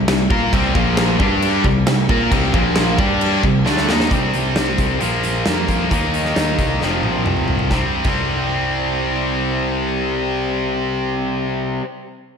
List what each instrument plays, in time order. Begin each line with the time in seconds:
0.08 picked electric bass C2, distorted electric guitar C3 G3, snare, crash
0.30 picked electric bass A#2, distorted electric guitar A#3 F4 A#4, kick
0.53 picked electric bass C2, distorted electric guitar C3 G3 C4, kick, crash
0.75 picked electric bass A#1, distorted electric guitar A#2 F3 A#3, kick
0.97 snare, crash
1.20 picked electric bass G2, distorted electric guitar G3 D4 G4, kick
1.42 crash
1.64 picked electric bass C2, distorted electric guitar C3 G3, kick
1.87 picked electric bass C2, distorted electric guitar C3 G3, snare, crash
2.09 picked electric bass A#2, distorted electric guitar A#3 F4 A#4, kick
2.31 picked electric bass C2, distorted electric guitar C3 G3 C4, kick, crash
2.53 picked electric bass A#1, distorted electric guitar A#2 F3 A#3, kick
2.76 snare, crash
2.99 picked electric bass G2, distorted electric guitar G3 D4 G4, kick
3.21 crash
3.43 picked electric bass C2, distorted electric guitar C3 G3, kick
3.66 picked electric bass D2, distorted electric guitar D3 A3 D4, snare
3.77 snare
3.88 picked electric bass D#2, distorted electric guitar D#3 A#3 D#4, snare
4.00 snare
4.10 picked electric bass C2, distorted electric guitar C3 G3 C4, kick, closed hi-hat
4.34 picked electric bass C2, closed hi-hat
4.56 picked electric bass C2, snare, closed hi-hat
4.78 picked electric bass C2, kick, closed hi-hat
5.00 picked electric bass A#1, distorted electric guitar A#2 F3 A#3, closed hi-hat
5.23 closed hi-hat
5.46 picked electric bass F2, snare, closed hi-hat
5.68 picked electric bass F2, kick, closed hi-hat
5.90 picked electric bass D#2, distorted electric guitar D#3 A#3 D#4, kick, closed hi-hat
6.14 closed hi-hat
6.25 snare
6.36 picked electric bass D#2, snare, closed hi-hat
6.59 picked electric bass C2, kick, closed hi-hat
6.81 picked electric bass F1, distorted electric guitar F2 C3 F3, snare
7.03 picked electric bass A#1, high tom
7.26 picked electric bass C2, mid tom
7.37 mid tom
7.48 picked electric bass C2, floor tom
7.59 floor tom
7.71 picked electric bass C2, distorted electric guitar C3 G3, kick, snare
7.75 distorted electric guitar C4
8.04 picked electric bass C2, distorted electric guitar C3 G3, kick, crash
8.09 distorted electric guitar C4